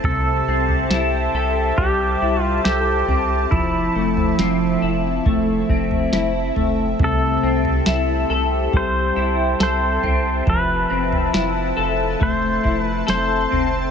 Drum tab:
SD |----o-------o---|----o-------o---|----o-------o---|----o-------o---|
FT |o--o----o-----o-|o--o----o--o--o-|o--o----o-----o-|o--o----o-----o-|
BD |o-------o-------|o-------o-o-----|o-------o-------|o-------o-o-----|